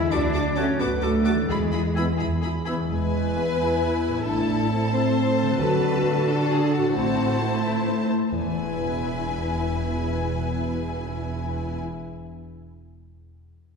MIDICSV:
0, 0, Header, 1, 13, 480
1, 0, Start_track
1, 0, Tempo, 460476
1, 124, Time_signature, 6, 3, 24, 8
1, 3968, Tempo, 451807
1, 14546, End_track
2, 0, Start_track
2, 0, Title_t, "Flute section"
2, 0, Program_c, 0, 73
2, 596, Note_on_c, 0, 93, 51
2, 707, Note_off_c, 0, 93, 0
2, 1324, Note_on_c, 0, 93, 52
2, 1430, Note_off_c, 0, 93, 0
2, 2033, Note_on_c, 0, 92, 45
2, 2149, Note_off_c, 0, 92, 0
2, 2760, Note_on_c, 0, 92, 46
2, 2877, Note_off_c, 0, 92, 0
2, 14546, End_track
3, 0, Start_track
3, 0, Title_t, "Oboe"
3, 0, Program_c, 1, 68
3, 595, Note_on_c, 1, 78, 53
3, 678, Note_off_c, 1, 78, 0
3, 1306, Note_on_c, 1, 78, 51
3, 1392, Note_off_c, 1, 78, 0
3, 2048, Note_on_c, 1, 88, 43
3, 2130, Note_off_c, 1, 88, 0
3, 2785, Note_on_c, 1, 88, 45
3, 2863, Note_off_c, 1, 88, 0
3, 14546, End_track
4, 0, Start_track
4, 0, Title_t, "Violin section"
4, 0, Program_c, 2, 48
4, 123, Note_on_c, 2, 86, 57
4, 207, Note_off_c, 2, 86, 0
4, 356, Note_on_c, 2, 86, 57
4, 439, Note_off_c, 2, 86, 0
4, 588, Note_on_c, 2, 86, 49
4, 672, Note_off_c, 2, 86, 0
4, 833, Note_on_c, 2, 86, 47
4, 916, Note_off_c, 2, 86, 0
4, 1069, Note_on_c, 2, 86, 43
4, 1152, Note_off_c, 2, 86, 0
4, 1309, Note_on_c, 2, 86, 46
4, 1393, Note_off_c, 2, 86, 0
4, 1567, Note_on_c, 2, 83, 47
4, 1651, Note_off_c, 2, 83, 0
4, 1803, Note_on_c, 2, 83, 41
4, 1886, Note_off_c, 2, 83, 0
4, 2053, Note_on_c, 2, 83, 43
4, 2136, Note_off_c, 2, 83, 0
4, 2289, Note_on_c, 2, 83, 40
4, 2373, Note_off_c, 2, 83, 0
4, 2535, Note_on_c, 2, 83, 39
4, 2618, Note_off_c, 2, 83, 0
4, 2775, Note_on_c, 2, 83, 40
4, 2858, Note_off_c, 2, 83, 0
4, 3028, Note_on_c, 2, 80, 50
4, 4411, Note_off_c, 2, 80, 0
4, 4452, Note_on_c, 2, 81, 51
4, 7264, Note_off_c, 2, 81, 0
4, 7313, Note_on_c, 2, 81, 55
4, 8521, Note_off_c, 2, 81, 0
4, 8767, Note_on_c, 2, 80, 44
4, 12443, Note_off_c, 2, 80, 0
4, 14546, End_track
5, 0, Start_track
5, 0, Title_t, "Clarinet"
5, 0, Program_c, 3, 71
5, 0, Note_on_c, 3, 76, 75
5, 124, Note_on_c, 3, 74, 81
5, 140, Note_off_c, 3, 76, 0
5, 588, Note_on_c, 3, 73, 74
5, 603, Note_off_c, 3, 74, 0
5, 835, Note_on_c, 3, 71, 79
5, 851, Note_off_c, 3, 73, 0
5, 1071, Note_on_c, 3, 69, 71
5, 1087, Note_off_c, 3, 71, 0
5, 1553, Note_off_c, 3, 69, 0
5, 1561, Note_on_c, 3, 68, 61
5, 2272, Note_off_c, 3, 68, 0
5, 14546, End_track
6, 0, Start_track
6, 0, Title_t, "Violin section"
6, 0, Program_c, 4, 48
6, 125, Note_on_c, 4, 69, 59
6, 208, Note_off_c, 4, 69, 0
6, 351, Note_on_c, 4, 69, 57
6, 435, Note_off_c, 4, 69, 0
6, 589, Note_on_c, 4, 69, 45
6, 672, Note_off_c, 4, 69, 0
6, 825, Note_on_c, 4, 69, 47
6, 908, Note_off_c, 4, 69, 0
6, 1068, Note_on_c, 4, 69, 46
6, 1151, Note_off_c, 4, 69, 0
6, 1303, Note_on_c, 4, 69, 45
6, 1386, Note_off_c, 4, 69, 0
6, 1552, Note_on_c, 4, 68, 48
6, 1636, Note_off_c, 4, 68, 0
6, 1799, Note_on_c, 4, 68, 42
6, 1883, Note_off_c, 4, 68, 0
6, 2036, Note_on_c, 4, 68, 36
6, 2120, Note_off_c, 4, 68, 0
6, 2262, Note_on_c, 4, 68, 42
6, 2346, Note_off_c, 4, 68, 0
6, 2514, Note_on_c, 4, 68, 42
6, 2598, Note_off_c, 4, 68, 0
6, 2763, Note_on_c, 4, 68, 37
6, 2847, Note_off_c, 4, 68, 0
6, 2999, Note_on_c, 4, 71, 59
6, 4396, Note_off_c, 4, 71, 0
6, 4452, Note_on_c, 4, 69, 54
6, 5142, Note_off_c, 4, 69, 0
6, 5154, Note_on_c, 4, 72, 67
6, 5862, Note_off_c, 4, 72, 0
6, 5867, Note_on_c, 4, 71, 63
6, 6579, Note_off_c, 4, 71, 0
6, 6596, Note_on_c, 4, 69, 64
6, 6827, Note_off_c, 4, 69, 0
6, 6839, Note_on_c, 4, 68, 56
6, 7071, Note_off_c, 4, 68, 0
6, 7071, Note_on_c, 4, 66, 57
6, 8025, Note_off_c, 4, 66, 0
6, 8036, Note_on_c, 4, 64, 40
6, 8389, Note_off_c, 4, 64, 0
6, 8760, Note_on_c, 4, 71, 42
6, 12439, Note_off_c, 4, 71, 0
6, 14546, End_track
7, 0, Start_track
7, 0, Title_t, "Viola section"
7, 0, Program_c, 5, 48
7, 142, Note_on_c, 5, 66, 60
7, 226, Note_off_c, 5, 66, 0
7, 369, Note_on_c, 5, 66, 43
7, 453, Note_off_c, 5, 66, 0
7, 608, Note_on_c, 5, 66, 51
7, 691, Note_off_c, 5, 66, 0
7, 840, Note_on_c, 5, 66, 52
7, 923, Note_off_c, 5, 66, 0
7, 1077, Note_on_c, 5, 66, 42
7, 1161, Note_off_c, 5, 66, 0
7, 1323, Note_on_c, 5, 66, 39
7, 1406, Note_off_c, 5, 66, 0
7, 1558, Note_on_c, 5, 64, 49
7, 1642, Note_off_c, 5, 64, 0
7, 1812, Note_on_c, 5, 64, 37
7, 1895, Note_off_c, 5, 64, 0
7, 2042, Note_on_c, 5, 64, 41
7, 2125, Note_off_c, 5, 64, 0
7, 2295, Note_on_c, 5, 64, 44
7, 2378, Note_off_c, 5, 64, 0
7, 2541, Note_on_c, 5, 64, 42
7, 2624, Note_off_c, 5, 64, 0
7, 2784, Note_on_c, 5, 64, 37
7, 2868, Note_off_c, 5, 64, 0
7, 3023, Note_on_c, 5, 64, 47
7, 3025, Note_on_c, 5, 71, 42
7, 4409, Note_off_c, 5, 71, 0
7, 4455, Note_on_c, 5, 69, 47
7, 5825, Note_off_c, 5, 64, 0
7, 5867, Note_on_c, 5, 66, 55
7, 7266, Note_off_c, 5, 69, 0
7, 7306, Note_off_c, 5, 66, 0
7, 7310, Note_on_c, 5, 72, 51
7, 7311, Note_on_c, 5, 64, 49
7, 8519, Note_off_c, 5, 72, 0
7, 8520, Note_off_c, 5, 64, 0
7, 8767, Note_on_c, 5, 64, 35
7, 12443, Note_off_c, 5, 64, 0
7, 14546, End_track
8, 0, Start_track
8, 0, Title_t, "Harp"
8, 0, Program_c, 6, 46
8, 0, Note_on_c, 6, 50, 55
8, 0, Note_on_c, 6, 54, 48
8, 0, Note_on_c, 6, 68, 43
8, 28, Note_on_c, 6, 66, 40
8, 76, Note_on_c, 6, 69, 46
8, 124, Note_off_c, 6, 68, 0
8, 1374, Note_on_c, 6, 52, 44
8, 1422, Note_on_c, 6, 56, 37
8, 1466, Note_on_c, 6, 64, 35
8, 1477, Note_off_c, 6, 50, 0
8, 1501, Note_off_c, 6, 54, 0
8, 1515, Note_on_c, 6, 68, 35
8, 1525, Note_off_c, 6, 66, 0
8, 1549, Note_off_c, 6, 69, 0
8, 2820, Note_off_c, 6, 52, 0
8, 2833, Note_on_c, 6, 52, 40
8, 2866, Note_off_c, 6, 56, 0
8, 2878, Note_on_c, 6, 56, 34
8, 2914, Note_off_c, 6, 64, 0
8, 2926, Note_on_c, 6, 64, 30
8, 2974, Note_on_c, 6, 71, 32
8, 4260, Note_on_c, 6, 45, 45
8, 4305, Note_on_c, 6, 57, 34
8, 4341, Note_off_c, 6, 64, 0
8, 4353, Note_on_c, 6, 64, 32
8, 4373, Note_off_c, 6, 52, 0
8, 4396, Note_off_c, 6, 56, 0
8, 4404, Note_on_c, 6, 69, 34
8, 4444, Note_off_c, 6, 68, 0
8, 4445, Note_off_c, 6, 71, 0
8, 5682, Note_on_c, 6, 50, 45
8, 5716, Note_off_c, 6, 57, 0
8, 5729, Note_on_c, 6, 57, 43
8, 5778, Note_on_c, 6, 66, 41
8, 5788, Note_off_c, 6, 45, 0
8, 5812, Note_off_c, 6, 69, 0
8, 5824, Note_on_c, 6, 69, 39
8, 5835, Note_off_c, 6, 64, 0
8, 7121, Note_on_c, 6, 45, 41
8, 7169, Note_on_c, 6, 60, 37
8, 7216, Note_on_c, 6, 64, 36
8, 7232, Note_off_c, 6, 50, 0
8, 7252, Note_off_c, 6, 69, 0
8, 7265, Note_on_c, 6, 69, 37
8, 7280, Note_off_c, 6, 66, 0
8, 8685, Note_off_c, 6, 45, 0
8, 8709, Note_off_c, 6, 60, 0
8, 8710, Note_off_c, 6, 57, 0
8, 8758, Note_off_c, 6, 69, 0
8, 8767, Note_on_c, 6, 40, 34
8, 8839, Note_on_c, 6, 52, 35
8, 8913, Note_on_c, 6, 59, 30
8, 8974, Note_off_c, 6, 64, 0
8, 8987, Note_on_c, 6, 64, 30
8, 9061, Note_on_c, 6, 68, 33
8, 9135, Note_on_c, 6, 76, 35
8, 13187, Note_off_c, 6, 40, 0
8, 13223, Note_off_c, 6, 52, 0
8, 13260, Note_off_c, 6, 59, 0
8, 13297, Note_off_c, 6, 64, 0
8, 13334, Note_off_c, 6, 68, 0
8, 13371, Note_off_c, 6, 76, 0
8, 14546, End_track
9, 0, Start_track
9, 0, Title_t, "French horn section"
9, 0, Program_c, 7, 60
9, 0, Note_on_c, 7, 64, 69
9, 117, Note_off_c, 7, 64, 0
9, 126, Note_on_c, 7, 62, 65
9, 597, Note_off_c, 7, 62, 0
9, 605, Note_on_c, 7, 61, 61
9, 839, Note_off_c, 7, 61, 0
9, 842, Note_on_c, 7, 59, 64
9, 1076, Note_off_c, 7, 59, 0
9, 1091, Note_on_c, 7, 57, 61
9, 1553, Note_off_c, 7, 57, 0
9, 1559, Note_on_c, 7, 56, 54
9, 2286, Note_off_c, 7, 56, 0
9, 3019, Note_on_c, 7, 56, 53
9, 3464, Note_off_c, 7, 56, 0
9, 3498, Note_on_c, 7, 59, 58
9, 3735, Note_off_c, 7, 59, 0
9, 3749, Note_on_c, 7, 64, 60
9, 4439, Note_off_c, 7, 64, 0
9, 4444, Note_on_c, 7, 62, 58
9, 4909, Note_off_c, 7, 62, 0
9, 4927, Note_on_c, 7, 60, 68
9, 5145, Note_off_c, 7, 60, 0
9, 5158, Note_on_c, 7, 60, 75
9, 5850, Note_off_c, 7, 60, 0
9, 5882, Note_on_c, 7, 54, 68
9, 6349, Note_on_c, 7, 57, 75
9, 6358, Note_off_c, 7, 54, 0
9, 6591, Note_off_c, 7, 57, 0
9, 6598, Note_on_c, 7, 62, 72
9, 7293, Note_off_c, 7, 62, 0
9, 7319, Note_on_c, 7, 60, 61
9, 7788, Note_off_c, 7, 60, 0
9, 7795, Note_on_c, 7, 57, 53
9, 7901, Note_off_c, 7, 57, 0
9, 8043, Note_on_c, 7, 57, 50
9, 8753, Note_off_c, 7, 57, 0
9, 8764, Note_on_c, 7, 52, 48
9, 12441, Note_off_c, 7, 52, 0
9, 14546, End_track
10, 0, Start_track
10, 0, Title_t, "Cello section"
10, 0, Program_c, 8, 48
10, 0, Note_on_c, 8, 64, 72
10, 107, Note_off_c, 8, 64, 0
10, 114, Note_on_c, 8, 62, 68
10, 581, Note_off_c, 8, 62, 0
10, 593, Note_on_c, 8, 61, 68
10, 828, Note_off_c, 8, 61, 0
10, 828, Note_on_c, 8, 59, 60
10, 911, Note_off_c, 8, 59, 0
10, 1070, Note_on_c, 8, 57, 59
10, 1542, Note_off_c, 8, 57, 0
10, 1556, Note_on_c, 8, 56, 48
10, 2269, Note_off_c, 8, 56, 0
10, 3013, Note_on_c, 8, 40, 43
10, 4403, Note_off_c, 8, 40, 0
10, 4449, Note_on_c, 8, 45, 44
10, 5864, Note_off_c, 8, 45, 0
10, 5864, Note_on_c, 8, 50, 59
10, 7276, Note_off_c, 8, 50, 0
10, 7318, Note_on_c, 8, 45, 47
10, 8523, Note_off_c, 8, 45, 0
10, 8765, Note_on_c, 8, 40, 35
10, 12442, Note_off_c, 8, 40, 0
10, 14546, End_track
11, 0, Start_track
11, 0, Title_t, "Trombone section"
11, 0, Program_c, 10, 61
11, 605, Note_on_c, 10, 57, 52
11, 611, Note_on_c, 10, 54, 54
11, 685, Note_off_c, 10, 57, 0
11, 689, Note_off_c, 10, 54, 0
11, 1320, Note_on_c, 10, 57, 53
11, 1326, Note_on_c, 10, 54, 52
11, 1401, Note_off_c, 10, 57, 0
11, 1405, Note_off_c, 10, 54, 0
11, 2052, Note_on_c, 10, 52, 51
11, 2060, Note_on_c, 10, 59, 44
11, 2133, Note_off_c, 10, 52, 0
11, 2137, Note_off_c, 10, 59, 0
11, 2780, Note_on_c, 10, 59, 51
11, 2783, Note_on_c, 10, 52, 47
11, 2860, Note_off_c, 10, 59, 0
11, 2862, Note_off_c, 10, 52, 0
11, 14546, End_track
12, 0, Start_track
12, 0, Title_t, "Timpani"
12, 0, Program_c, 11, 47
12, 8761, Note_on_c, 11, 40, 29
12, 13183, Note_off_c, 11, 40, 0
12, 14546, End_track
13, 0, Start_track
13, 0, Title_t, "Double bass section"
13, 0, Program_c, 12, 48
13, 114, Note_on_c, 12, 38, 55
13, 745, Note_off_c, 12, 38, 0
13, 834, Note_on_c, 12, 38, 66
13, 1468, Note_off_c, 12, 38, 0
13, 1557, Note_on_c, 12, 40, 48
13, 2198, Note_off_c, 12, 40, 0
13, 2291, Note_on_c, 12, 40, 52
13, 2929, Note_off_c, 12, 40, 0
13, 3019, Note_on_c, 12, 28, 37
13, 3464, Note_off_c, 12, 28, 0
13, 4450, Note_on_c, 12, 33, 39
13, 4888, Note_off_c, 12, 33, 0
13, 5873, Note_on_c, 12, 38, 46
13, 6320, Note_off_c, 12, 38, 0
13, 7315, Note_on_c, 12, 33, 44
13, 7753, Note_off_c, 12, 33, 0
13, 8765, Note_on_c, 12, 28, 38
13, 12442, Note_off_c, 12, 28, 0
13, 14546, End_track
0, 0, End_of_file